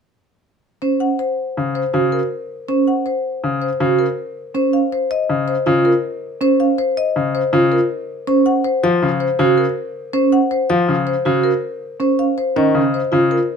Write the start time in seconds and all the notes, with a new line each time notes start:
0.82 C#4 C5
1.00 F#5
1.19 C5
1.57 C#3
1.75 C5
1.94 C#3 F#4
2.12 A#4
2.68 C#4 C5
2.88 F#5
3.06 C5
3.44 C#3
3.62 C5
3.80 C#3 F#4
3.99 A#4
4.54 C#4 C5
4.73 F5
4.92 C5
5.11 D#5
5.29 C#3
5.48 C5
5.66 C#3 F4
5.85 A#4
6.41 C#4 C5
6.60 F5
6.78 C5
6.97 D#5
7.16 C#3
7.35 C5
7.53 C#3 F4
7.72 A#4
8.27 C#4 C5
8.46 F#5
8.64 C5
8.83 F3 F5
9.02 C#3
9.20 C5
9.39 C#3 F#4
9.58 A#4
10.13 C#4 C5
10.32 F#5
10.51 C5
10.70 F3 F5
10.88 C#3
11.07 C5
11.25 C#3 F#4
11.44 A#4
12.00 C#4 C5
12.19 F5
12.38 C5
12.56 D#3 C#4 D#5
12.75 C#3
12.94 C5
13.12 C#3 F4
13.31 A#4